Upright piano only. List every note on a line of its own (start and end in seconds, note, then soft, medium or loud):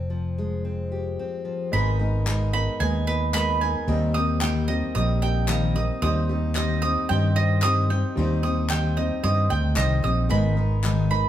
1.72 3.84 G#1 medium
1.72 3.84 G#2 medium
1.72 1.97 G#3 loud
1.72 1.97 B3 loud
1.72 1.98 D#4 loud
1.72 1.98 A#4 loud
1.72 1.98 D#5 loud
2.00 2.24 G#3 medium
2.00 2.25 B3 medium
2.00 2.25 D#4 medium
2.00 2.25 A#4 medium
2.00 2.25 D#5 medium
2.27 2.51 G#3 medium
2.27 2.51 B3 medium
2.27 2.52 D#4 medium
2.27 2.52 A#4 medium
2.27 2.52 D#5 medium
2.53 2.78 G#3 medium
2.53 2.78 B3 medium
2.53 2.78 D#4 medium
2.53 2.78 A#4 medium
2.53 2.79 D#5 loud
2.80 3.05 G#3 loud
2.80 3.05 B3 loud
2.80 3.05 D#4 loud
2.80 3.05 A#4 medium
2.80 3.06 D#5 loud
3.06 3.32 G#3 medium
3.06 3.32 B3 medium
3.06 3.32 D#4 medium
3.06 3.32 A#4 medium
3.06 3.33 D#5 loud
3.33 3.58 G#3 loud
3.33 3.59 B3 medium
3.33 3.59 D#4 medium
3.33 3.59 A#4 medium
3.33 3.59 D#5 loud
3.60 3.85 G#3 medium
3.60 3.86 B3 medium
3.60 3.86 D#4 medium
3.60 3.86 A#4 medium
3.60 3.87 D#5 medium
3.87 5.99 D#2 medium
3.87 5.99 D#3 medium
3.87 4.12 G3 loud
3.87 4.13 C4 loud
3.87 4.13 D#4 loud
3.87 4.13 A#4 loud
3.87 4.13 D#5 loud
4.15 4.39 G3 medium
4.15 4.39 C4 medium
4.15 4.40 D#4 medium
4.15 4.40 A#4 medium
4.15 4.40 D#5 loud
4.42 4.66 G3 medium
4.42 4.66 C4 medium
4.42 4.66 D#4 medium
4.42 4.67 A#4 medium
4.42 4.67 D#5 medium
4.68 4.93 G3 medium
4.68 4.93 C4 medium
4.68 4.93 D#4 medium
4.68 4.93 A#4 medium
4.68 4.94 D#5 loud
4.94 5.19 G3 loud
4.94 5.20 C4 loud
4.94 5.20 D#4 loud
4.94 5.20 A#4 loud
4.94 5.20 D#5 loud
5.21 5.46 G3 medium
5.21 5.46 C4 medium
5.21 5.46 D#4 medium
5.21 5.46 A#4 medium
5.21 5.47 D#5 loud
5.47 5.73 G3 loud
5.47 5.73 C4 medium
5.47 5.73 D#4 medium
5.47 5.73 A#4 medium
5.47 5.73 F5 loud
5.74 5.99 G3 medium
5.74 6.00 C4 medium
5.74 6.00 D#4 medium
5.74 6.00 A#4 medium
5.74 6.00 D#5 medium
6.02 8.13 D#2 medium
6.02 8.13 D#3 medium
6.02 6.27 G3 loud
6.02 6.27 C4 loud
6.02 6.27 D#4 loud
6.02 6.27 C5 loud
6.02 6.27 D#5 loud
6.29 6.54 G3 medium
6.29 6.54 C4 medium
6.29 6.54 D#4 medium
6.29 6.54 C5 medium
6.29 6.54 D#5 loud
6.55 6.80 G3 medium
6.55 6.80 C4 medium
6.55 6.80 D#4 medium
6.55 6.81 C5 medium
6.55 6.81 D#5 loud
6.82 7.07 G3 medium
6.82 7.07 C4 medium
6.82 7.08 D#4 medium
6.82 7.08 C5 medium
6.82 7.08 D#5 loud
7.09 7.34 G3 loud
7.09 7.34 C4 loud
7.09 7.34 D#4 loud
7.09 7.34 C5 loud
7.09 7.35 D#5 loud
7.36 7.61 G3 medium
7.36 7.61 C4 medium
7.36 7.61 D#4 medium
7.36 7.61 C5 medium
7.36 7.62 D#5 loud
7.63 7.87 G3 medium
7.63 7.87 C4 medium
7.63 7.87 D#4 medium
7.63 7.88 C5 medium
7.63 7.88 D#5 loud
7.89 8.14 G3 medium
7.89 8.14 C4 medium
7.89 8.14 D#4 medium
7.89 8.14 C5 medium
7.89 8.14 D#5 medium
8.16 10.26 D#2 medium
8.16 10.26 D#3 medium
8.16 8.40 G3 loud
8.16 8.41 C4 loud
8.16 8.41 D#4 loud
8.16 8.41 C5 loud
8.16 8.41 D#5 loud
8.42 8.67 G3 medium
8.42 8.68 C4 medium
8.42 8.68 D#4 medium
8.42 8.68 C5 medium
8.42 8.68 D#5 medium
8.70 8.94 G3 medium
8.70 8.95 C4 medium
8.70 8.95 D#4 medium
8.70 8.95 C5 medium
8.70 8.95 D#5 loud
8.96 9.21 G3 medium
8.96 9.21 C4 medium
8.96 9.21 D#4 medium
8.96 9.22 C5 medium
8.96 9.22 D#5 medium
9.23 9.48 G3 loud
9.23 9.48 C4 loud
9.23 9.48 D#4 loud
9.23 9.48 C5 medium
9.23 9.49 D#5 loud
9.49 9.73 G3 loud
9.49 9.74 C4 medium
9.49 9.74 D#4 medium
9.49 9.74 C5 medium
9.49 9.74 D#5 loud
9.75 10.00 G3 loud
9.75 10.00 C4 medium
9.75 10.01 D#4 medium
9.75 10.01 C5 medium
9.75 10.01 D#5 loud
10.03 10.28 G3 medium
10.03 10.28 C4 medium
10.03 10.28 D#4 medium
10.03 10.28 C5 medium
10.03 10.28 D#5 medium
10.29 11.29 G#1 medium
10.29 11.29 G#2 medium
10.29 10.54 G#3 loud
10.29 10.54 B3 loud
10.29 10.54 D#4 loud
10.29 10.55 A#4 loud
10.29 10.55 D#5 loud
10.55 10.80 G#3 medium
10.55 10.81 B3 medium
10.55 10.81 D#4 medium
10.55 10.81 A#4 medium
10.55 10.81 D#5 loud
10.83 11.08 G#3 medium
10.83 11.08 B3 medium
10.83 11.08 D#4 medium
10.83 11.08 A#4 medium
10.83 11.09 D#5 medium
11.10 11.29 G#3 medium
11.10 11.29 B3 medium
11.10 11.29 D#4 medium
11.10 11.29 A#4 medium
11.10 11.29 D#5 medium